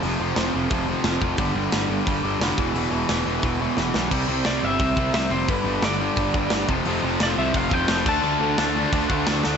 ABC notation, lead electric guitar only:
X:1
M:4/4
L:1/8
Q:1/4=175
K:Flyd
V:1 name="Lead electric guitar"
z8 | z8 | z8 | z2 d e3 e c |
B2 d4- d z | z2 d e f g2 a- | a6 z2 |]